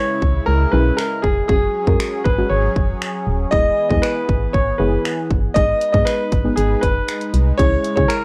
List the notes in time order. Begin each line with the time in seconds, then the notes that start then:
Already playing: C#3 G#3 C#4 E4 B4 C#5
0.22 C#2, kick
0.46 C#2 A#4
0.72 B1 G#3 C#4 E4 G#4 B4
0.97 A#4, finger snap
1.22 F1 G#4, kick
1.48 F#1 F#3 G#3 C#4 F#4 G#4, kick
1.87 F#2 G#3 C#4 F#4 A#4, kick
2.00 finger snap
2.24 G#1 B4, kick
2.38 G#3 C#4 F#4 G#4
2.50 G#1 C#5
2.76 F#1, kick
3.02 finger snap
3.27 D#1
3.51 E1 E3 G#3 B3 E4 G#4 D#5, kick
3.89 E2 G#3 B3 E4 G#4 D#5, kick
4.02 B4, finger snap
4.29 G#1, kick
4.53 G#1 C#5, kick
4.78 F#1 G#3 B3 E4 G#4 B4
5.05 finger snap
5.31 G1, kick
5.54 G#1 G#3 B3 D#4 G#4 B4 D#5, kick, closed hi-hat
5.81 closed hi-hat
5.92 G#2 G#3 B3 D#4 G#4 D#5, kick
6.05 B4, finger snap, closed hi-hat
6.32 G#1, kick, closed hi-hat
6.44 G#3 B3 D#4 G#4
6.56 G#1 G#4, closed hi-hat
6.81 F#1 B4, kick, closed hi-hat
7.08 finger snap, closed hi-hat
7.21 closed hi-hat
7.34 C2, closed hi-hat
7.58 C#2 G#3 C#4 E4 G#4 C#5, kick, closed hi-hat
7.84 closed hi-hat
7.96 C#3 G#3 C#4 E4 G#4 C#5, kick
8.08 A#4, finger snap, closed hi-hat